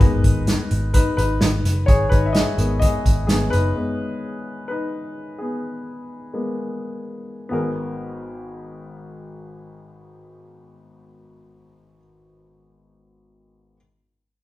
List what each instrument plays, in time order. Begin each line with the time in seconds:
Already playing: grand piano D#4 B4
0.00 picked electric bass G#1, grand piano G#3 B3 A#4, kick, closed hi-hat
0.24 picked electric bass G#1, kick, closed hi-hat
0.47 snare, closed hi-hat
0.71 picked electric bass G#1, closed hi-hat
0.94 grand piano D#4 B4, kick, closed hi-hat
1.17 picked electric bass G#1, grand piano D#4 B4, closed hi-hat
1.41 picked electric bass G#1, snare, closed hi-hat
1.64 picked electric bass F#1, snare, closed hi-hat
1.86 picked electric bass G#1, grand piano G#4 C#5, kick, closed hi-hat
2.09 picked electric bass G#1, grand piano D#4 B4, kick, closed hi-hat
2.26 grand piano E5
2.33 grand piano G#4 D#5, snare, closed hi-hat
2.57 picked electric bass G#1, grand piano G#3 B3 A#4, closed hi-hat
2.79 grand piano G#4 D#5, kick, closed hi-hat
3.06 picked electric bass G#1, kick, closed hi-hat
3.27 picked electric bass G#1, grand piano B3 G#4, snare, closed hi-hat
3.50 picked electric bass F#1, grand piano D#4 B4, closed hi-hat
3.76 grand piano G#3 B3
4.68 grand piano D#4 B4
5.38 grand piano B3 G#4
6.33 grand piano G#3 A#3 B3
7.49 grand piano G#1 B3 G#4 A#4